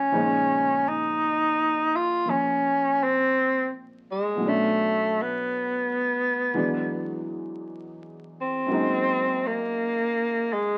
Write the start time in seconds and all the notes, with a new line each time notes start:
Already playing: F2 F3 A3 C#4 C5
0.12 A#2 C#3 F3 G#3 D#4 C5
0.89 D#4
1.96 F4
2.25 F3 A#3
2.30 C#4
3.03 C4
4.11 G#3
4.35 B2 F#3
4.40 A3 C#4
4.46 A3 D4
5.22 B3
6.54 E2 E3 F#3 G#3 D4
8.41 C4
8.67 F#2 F#3 G#3 A#3
8.72 D#4
9.47 A#3
10.53 G#3